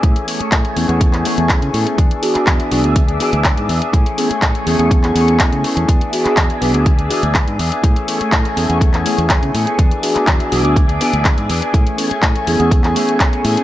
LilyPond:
<<
  \new Staff \with { instrumentName = "String machine" } { \time 4/4 \key a \major \tempo 4 = 123 <a gis'' cis'''>1 | <gis' e'' d'''>1 | <a gis'' cis'''>1 | <gis' e'' d'''>1 |
<a gis'' cis'''>1 | <gis' e'' d'''>1 | <a gis'' cis'''>1 | }
  \new Staff \with { instrumentName = "Tine electric piano" } { \time 4/4 \key a \major r8 <b cis' e' gis'>16 r8. <b cis' e' gis'>16 <b cis' e' gis'>8 <b cis' e' gis'>4.~ <b cis' e' gis'>16 | r8 <b d' fis' gis'>4 <b d' fis' gis'>16 <b d' fis' gis'>16 r8 <b d' fis' gis'>16 r4 r16 | r8 <b cis' e' gis'>16 r8. <b cis' e' gis'>16 <b cis' e' gis'>8 <b cis' e' gis'>4.~ <b cis' e' gis'>16 | r8 <b d' fis' gis'>4 <b d' fis' gis'>16 <b d' fis' gis'>16 r8 <b d' fis' gis'>16 r4 r16 |
r8 <b cis' e' gis'>16 r8. <b cis' e' gis'>16 <b cis' e' gis'>8 <b cis' e' gis'>4.~ <b cis' e' gis'>16 | r8 <b d' fis' gis'>4 <b d' fis' gis'>16 <b d' fis' gis'>16 r8 <b d' fis' gis'>16 r4 r16 | r8 <b cis' e' gis'>16 r8. <b cis' e' gis'>16 <b cis' e' gis'>8 <b cis' e' gis'>4.~ <b cis' e' gis'>16 | }
  \new Staff \with { instrumentName = "Clean electric guitar" } { \time 4/4 \key a \major e8. <a cis' gis'>16 <e a cis' gis'>8 <e a cis' gis'>16 <a cis' gis'>8 <a cis' gis'>16 <e a cis' gis'>8 <e a gis'>8 <e a cis' gis'>16 <a cis' gis'>16 | <b d' gis'>8. <b d' gis'>16 <e gis'>8 <e b d' gis'>16 <b d' gis'>8 <b d' gis'>16 <e b d' gis'>8 <d' gis'>8 <e b d' gis'>16 <b d' gis'>16 | <e a cis' gis'>8. <a cis' gis'>16 <e a gis'>8 <e a cis' gis'>16 <a cis' gis'>8 <a cis' gis'>16 <e a cis' gis'>8 gis'8 <e a cis' gis'>16 <a cis' gis'>16 | <e b d' gis'>8. <b d' gis'>16 <e d' gis'>8 <e b d' gis'>16 <b d' gis'>8 <b d' gis'>16 <e b d' gis'>8 gis'8 <e b d' gis'>16 <b d' gis'>16 |
<e a gis'>8. <a cis' gis'>16 e8 <e a cis' gis'>16 <a cis' gis'>8 <a cis' gis'>16 <e a cis' gis'>8 gis'8 <e a cis' gis'>16 <a cis' gis'>16 | <e b d' gis'>8. <b d' gis'>16 <e d' gis'>8 <e b d' gis'>16 <b d' gis'>8 <b d' gis'>16 <e b d' gis'>8 gis'8 <e b d' gis'>16 <b d' gis'>16 | <e a gis'>8. <a cis' gis'>16 <e gis'>8 <e a cis' gis'>16 <a cis' gis'>8 <a cis' gis'>16 <e a cis' gis'>8 gis'8 <e a cis' gis'>16 <a cis' gis'>16 | }
  \new Staff \with { instrumentName = "Fingered electric bass" } { \clef bass \time 4/4 \key a \major a,16 r8. a,16 r16 e,16 e,8. r16 e,8 cis16 a,16 r16 | e,16 r8. e,16 r16 b,,16 d,8. r16 d,8 gis,16 e,16 r16 | a,16 r8. a,16 r16 e,16 e,8. e,8. cis16 r16 e,16 | e,16 r8. e,16 r16 b,,16 d,8. r16 d,8 gis,16 e,16 r16 |
a,16 r8. a,16 r16 e,16 e,8. r16 e,8 cis16 a,16 r16 | e,16 r8. e,16 r16 b,,16 d,8. r16 d,8 gis,16 e,16 r16 | a,16 r8. a,16 r16 e,16 e,8. r4 a,16 r16 | }
  \new DrumStaff \with { instrumentName = "Drums" } \drummode { \time 4/4 <hh bd>16 hh16 hho16 hh16 <hc hh bd>16 hh16 hho16 hh16 <hh bd>16 <hc hh>16 hho16 hh16 <hc hh bd>16 hh16 hho16 hh16 | <hh bd>16 hh16 hho16 <hc hh>16 <hc hh bd>16 hh16 hho16 hh16 <hh bd>16 hh16 hho16 hh16 <hc hh bd>16 hh16 hho16 hh16 | <hh bd>16 hh16 hho16 hh16 <hc hh bd>16 hh16 hho16 hh16 <hh bd>16 <hc hh>16 hho16 hh16 <hc hh bd>16 hh16 hho16 hh16 | <hh bd>16 hh16 hho16 <hc hh>16 <hc hh bd>16 hh16 hho16 hh16 <hh bd>16 hh16 hho16 hh16 <hc hh bd>16 hh16 hho16 hh16 |
<hh bd>16 hh16 hho16 hh16 <hc hh bd>16 hh16 hho16 hh16 <hh bd>16 <hc hh>16 hho16 hh16 <hc hh bd>16 hh16 hho16 hh16 | <hh bd>16 hh16 hho16 <hc hh>16 <hc hh bd>16 hh16 hho16 hh16 <hh bd>16 hh16 hho16 hh16 <hc hh bd>16 hh16 hho16 hh16 | <hh bd>16 hh16 hho16 hh16 <hc hh bd>16 hh16 hho16 hh16 <hh bd>16 <hc hh>16 hho16 hh16 <hc hh bd>16 hh16 hho16 hh16 | }
>>